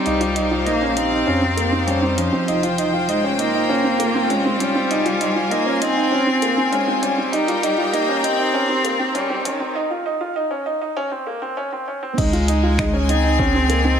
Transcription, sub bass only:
0, 0, Header, 1, 2, 480
1, 0, Start_track
1, 0, Key_signature, -4, "minor"
1, 0, Tempo, 606061
1, 48, Time_signature, 4, 2, 24, 8
1, 11086, End_track
2, 0, Start_track
2, 0, Title_t, "Sub bass"
2, 0, Program_c, 0, 38
2, 44, Note_on_c, 0, 36, 94
2, 524, Note_on_c, 0, 34, 89
2, 536, Note_off_c, 0, 36, 0
2, 973, Note_off_c, 0, 34, 0
2, 1004, Note_on_c, 0, 41, 95
2, 1813, Note_off_c, 0, 41, 0
2, 1966, Note_on_c, 0, 29, 92
2, 3734, Note_off_c, 0, 29, 0
2, 3886, Note_on_c, 0, 29, 96
2, 4364, Note_on_c, 0, 27, 95
2, 4376, Note_off_c, 0, 29, 0
2, 4845, Note_on_c, 0, 29, 84
2, 4857, Note_off_c, 0, 27, 0
2, 5774, Note_off_c, 0, 29, 0
2, 5805, Note_on_c, 0, 27, 97
2, 7574, Note_off_c, 0, 27, 0
2, 9646, Note_on_c, 0, 37, 98
2, 11086, Note_off_c, 0, 37, 0
2, 11086, End_track
0, 0, End_of_file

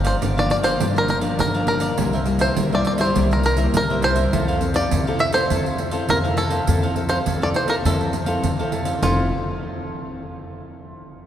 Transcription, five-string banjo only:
0, 0, Header, 1, 2, 480
1, 0, Start_track
1, 0, Key_signature, -1, "major"
1, 0, Tempo, 587084
1, 1621, Time_signature, 4, 2, 24, 8
1, 9210, End_track
2, 0, Start_track
2, 0, Title_t, "Five-string banjo"
2, 0, Program_c, 0, 105
2, 54, Note_on_c, 0, 72, 78
2, 120, Note_off_c, 0, 72, 0
2, 319, Note_on_c, 0, 74, 93
2, 408, Note_off_c, 0, 74, 0
2, 418, Note_on_c, 0, 74, 90
2, 459, Note_off_c, 0, 74, 0
2, 525, Note_on_c, 0, 72, 82
2, 756, Note_off_c, 0, 72, 0
2, 802, Note_on_c, 0, 70, 80
2, 889, Note_off_c, 0, 70, 0
2, 899, Note_on_c, 0, 70, 84
2, 964, Note_off_c, 0, 70, 0
2, 1147, Note_on_c, 0, 70, 90
2, 1365, Note_off_c, 0, 70, 0
2, 1374, Note_on_c, 0, 70, 86
2, 1945, Note_off_c, 0, 70, 0
2, 1973, Note_on_c, 0, 72, 84
2, 2200, Note_off_c, 0, 72, 0
2, 2246, Note_on_c, 0, 74, 92
2, 2337, Note_off_c, 0, 74, 0
2, 2347, Note_on_c, 0, 74, 90
2, 2388, Note_off_c, 0, 74, 0
2, 2459, Note_on_c, 0, 72, 89
2, 2683, Note_off_c, 0, 72, 0
2, 2721, Note_on_c, 0, 70, 82
2, 2817, Note_off_c, 0, 70, 0
2, 2827, Note_on_c, 0, 70, 92
2, 3047, Note_off_c, 0, 70, 0
2, 3081, Note_on_c, 0, 70, 96
2, 3295, Note_off_c, 0, 70, 0
2, 3304, Note_on_c, 0, 72, 102
2, 3887, Note_off_c, 0, 72, 0
2, 3890, Note_on_c, 0, 74, 93
2, 4230, Note_off_c, 0, 74, 0
2, 4253, Note_on_c, 0, 76, 95
2, 4363, Note_off_c, 0, 76, 0
2, 4367, Note_on_c, 0, 72, 96
2, 4941, Note_off_c, 0, 72, 0
2, 4988, Note_on_c, 0, 70, 97
2, 5051, Note_off_c, 0, 70, 0
2, 5214, Note_on_c, 0, 69, 95
2, 5784, Note_off_c, 0, 69, 0
2, 5801, Note_on_c, 0, 72, 88
2, 5868, Note_off_c, 0, 72, 0
2, 6077, Note_on_c, 0, 74, 94
2, 6118, Note_off_c, 0, 74, 0
2, 6182, Note_on_c, 0, 72, 88
2, 6292, Note_on_c, 0, 70, 87
2, 6293, Note_off_c, 0, 72, 0
2, 6333, Note_off_c, 0, 70, 0
2, 6428, Note_on_c, 0, 69, 73
2, 7112, Note_off_c, 0, 69, 0
2, 7383, Note_on_c, 0, 65, 80
2, 7605, Note_off_c, 0, 65, 0
2, 9210, End_track
0, 0, End_of_file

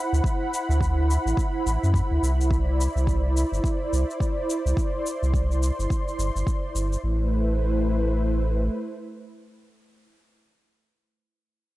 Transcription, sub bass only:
0, 0, Header, 1, 2, 480
1, 0, Start_track
1, 0, Tempo, 566038
1, 204, Time_signature, 4, 2, 24, 8
1, 9973, End_track
2, 0, Start_track
2, 0, Title_t, "Sub bass"
2, 0, Program_c, 0, 38
2, 108, Note_on_c, 0, 38, 89
2, 176, Note_off_c, 0, 38, 0
2, 587, Note_on_c, 0, 38, 92
2, 998, Note_off_c, 0, 38, 0
2, 1065, Note_on_c, 0, 33, 88
2, 1134, Note_off_c, 0, 33, 0
2, 1410, Note_on_c, 0, 33, 101
2, 1507, Note_off_c, 0, 33, 0
2, 1554, Note_on_c, 0, 42, 84
2, 1705, Note_off_c, 0, 42, 0
2, 1790, Note_on_c, 0, 38, 91
2, 1857, Note_off_c, 0, 38, 0
2, 1887, Note_on_c, 0, 36, 79
2, 2440, Note_off_c, 0, 36, 0
2, 2507, Note_on_c, 0, 36, 96
2, 2918, Note_off_c, 0, 36, 0
2, 2986, Note_on_c, 0, 31, 97
2, 3055, Note_off_c, 0, 31, 0
2, 3330, Note_on_c, 0, 36, 83
2, 3427, Note_off_c, 0, 36, 0
2, 3949, Note_on_c, 0, 36, 84
2, 4016, Note_off_c, 0, 36, 0
2, 4432, Note_on_c, 0, 36, 93
2, 4841, Note_off_c, 0, 36, 0
2, 4912, Note_on_c, 0, 31, 87
2, 4978, Note_off_c, 0, 31, 0
2, 5247, Note_on_c, 0, 31, 87
2, 5345, Note_off_c, 0, 31, 0
2, 5390, Note_on_c, 0, 31, 94
2, 5457, Note_off_c, 0, 31, 0
2, 5725, Note_on_c, 0, 31, 86
2, 5906, Note_off_c, 0, 31, 0
2, 5966, Note_on_c, 0, 33, 77
2, 7371, Note_off_c, 0, 33, 0
2, 9973, End_track
0, 0, End_of_file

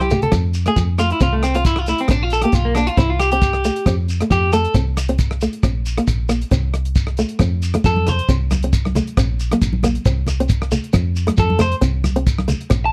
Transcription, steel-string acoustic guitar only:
0, 0, Header, 1, 3, 480
1, 0, Start_track
1, 0, Key_signature, -1, "major"
1, 0, Tempo, 442478
1, 360, Time_signature, 4, 2, 24, 8
1, 14021, End_track
2, 0, Start_track
2, 0, Title_t, "Steel-string acoustic guitar"
2, 0, Program_c, 0, 25
2, 121, Note_on_c, 0, 57, 74
2, 329, Note_off_c, 0, 57, 0
2, 343, Note_on_c, 0, 60, 79
2, 559, Note_off_c, 0, 60, 0
2, 733, Note_on_c, 0, 57, 74
2, 940, Note_off_c, 0, 57, 0
2, 1079, Note_on_c, 0, 57, 78
2, 1288, Note_off_c, 0, 57, 0
2, 1316, Note_on_c, 0, 60, 79
2, 1526, Note_off_c, 0, 60, 0
2, 1690, Note_on_c, 0, 60, 75
2, 1898, Note_off_c, 0, 60, 0
2, 2039, Note_on_c, 0, 57, 73
2, 2248, Note_off_c, 0, 57, 0
2, 2287, Note_on_c, 0, 60, 79
2, 2493, Note_off_c, 0, 60, 0
2, 2657, Note_on_c, 0, 58, 76
2, 2862, Note_off_c, 0, 58, 0
2, 3006, Note_on_c, 0, 58, 85
2, 3213, Note_off_c, 0, 58, 0
2, 3234, Note_on_c, 0, 60, 80
2, 3445, Note_off_c, 0, 60, 0
2, 3608, Note_on_c, 0, 60, 76
2, 3817, Note_off_c, 0, 60, 0
2, 3960, Note_on_c, 0, 57, 75
2, 4169, Note_off_c, 0, 57, 0
2, 4200, Note_on_c, 0, 60, 83
2, 4409, Note_off_c, 0, 60, 0
2, 4574, Note_on_c, 0, 57, 73
2, 4781, Note_off_c, 0, 57, 0
2, 4918, Note_on_c, 0, 57, 89
2, 5128, Note_off_c, 0, 57, 0
2, 5149, Note_on_c, 0, 60, 80
2, 5363, Note_off_c, 0, 60, 0
2, 5522, Note_on_c, 0, 60, 82
2, 5734, Note_off_c, 0, 60, 0
2, 5883, Note_on_c, 0, 57, 76
2, 6091, Note_off_c, 0, 57, 0
2, 6117, Note_on_c, 0, 60, 83
2, 6328, Note_off_c, 0, 60, 0
2, 6486, Note_on_c, 0, 58, 75
2, 6697, Note_off_c, 0, 58, 0
2, 6823, Note_on_c, 0, 58, 77
2, 7040, Note_off_c, 0, 58, 0
2, 7071, Note_on_c, 0, 60, 81
2, 7284, Note_off_c, 0, 60, 0
2, 7796, Note_on_c, 0, 57, 75
2, 8008, Note_off_c, 0, 57, 0
2, 8036, Note_on_c, 0, 60, 76
2, 8248, Note_off_c, 0, 60, 0
2, 8403, Note_on_c, 0, 57, 76
2, 8616, Note_off_c, 0, 57, 0
2, 8997, Note_on_c, 0, 60, 79
2, 9208, Note_off_c, 0, 60, 0
2, 9372, Note_on_c, 0, 60, 78
2, 9581, Note_off_c, 0, 60, 0
2, 9721, Note_on_c, 0, 57, 80
2, 9931, Note_off_c, 0, 57, 0
2, 9957, Note_on_c, 0, 60, 80
2, 10168, Note_off_c, 0, 60, 0
2, 10334, Note_on_c, 0, 58, 79
2, 10542, Note_off_c, 0, 58, 0
2, 10675, Note_on_c, 0, 58, 91
2, 10888, Note_off_c, 0, 58, 0
2, 10911, Note_on_c, 0, 60, 83
2, 11126, Note_off_c, 0, 60, 0
2, 11284, Note_on_c, 0, 60, 79
2, 11497, Note_off_c, 0, 60, 0
2, 11625, Note_on_c, 0, 57, 79
2, 11842, Note_off_c, 0, 57, 0
2, 11858, Note_on_c, 0, 60, 85
2, 12078, Note_off_c, 0, 60, 0
2, 12224, Note_on_c, 0, 57, 80
2, 12446, Note_off_c, 0, 57, 0
2, 12570, Note_on_c, 0, 57, 93
2, 12794, Note_off_c, 0, 57, 0
2, 12815, Note_on_c, 0, 60, 81
2, 13036, Note_off_c, 0, 60, 0
2, 13191, Note_on_c, 0, 60, 82
2, 13410, Note_off_c, 0, 60, 0
2, 13536, Note_on_c, 0, 57, 80
2, 13757, Note_off_c, 0, 57, 0
2, 13775, Note_on_c, 0, 60, 81
2, 13997, Note_off_c, 0, 60, 0
2, 14021, End_track
3, 0, Start_track
3, 0, Title_t, "Muted steel-string acoustic guitar strokes"
3, 8762, Note_on_c, 9, 29, 81
3, 8870, Note_off_c, 9, 29, 0
3, 14021, End_track
0, 0, End_of_file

